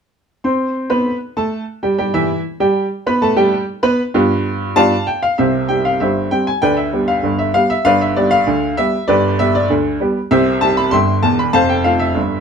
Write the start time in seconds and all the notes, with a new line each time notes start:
0.44 C4 C5 C6
0.90 B3 B4 B5
1.37 A3 A4 A5
1.83 G3 G4 G5
1.98 G3 G4 G5
2.14 E3 E4 E5
2.60 G3 G4 G5
3.06 B3 B4 B5
3.22 A3 A4 A5
3.37 G3 G4 G5
3.83 B3 B4 B5
4.14 G2 B3 F4 G4
4.76 G2 B3 F4 G4 D5 F5 A5
5.07 G5
5.23 F5
5.38 C2 C3 G4 C5 E5
5.69 G3 C4 G4 G5
5.85 F5
6.00 G1 G2 G4 C5 E5
6.31 G3 C4 G4 G5
6.47 G#5
6.62 D2 D3 B4 D5 G5
6.77 E5
6.93 G3 B3 G4
7.08 F5
7.23 G1 G2
7.39 E5
7.54 G3 B3 G4 F5
7.70 E5
7.85 G1 G2 B4 D5 F5
8.01 E5
8.16 G3 B3 G4 D5
8.31 F5
8.47 D2 D3
8.77 G3 B3 G4 E5
9.08 G1 G2 G4 B4 D5
9.39 G3 B3 G4 E5
9.55 D5
9.70 D2 D3
10.00 G3 B3 G4
10.31 C2 C3 G4 C5 E5
10.61 G3 C4 G4 A5
10.77 B5
10.91 G1 G2 E5 G5 C6
11.23 E1 E2 A5
11.39 B5
11.53 F1 F2 C5 F5 A5
11.69 G5
11.84 A3 C4 F4 F5
11.99 E5
12.15 G1 G2